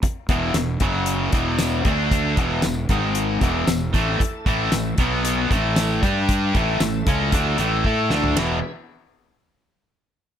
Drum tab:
RD |----------------|----------------|----------------|----------------|
HH |x-x-x-x-x-x-x-x-|x-x-x-x-x-x-x-x-|x-x-x-x-x-x-x-x-|x-x-x-x-x-x-----|
TB |----x-------x---|----x-------x---|----x-------x---|----x-----------|
SD |----o-------o---|----o-------o---|----o-------o---|----o---------o-|
FT |----------------|----------------|----------------|---------------o|
BD |o-o---o---o---o-|o-o---o---o---o-|o-o---o---o---o-|o-o---o-o---o---|

RD |b---------------|
HH |----------------|
TB |----------------|
SD |o---------------|
FT |----------------|
BD |----------------|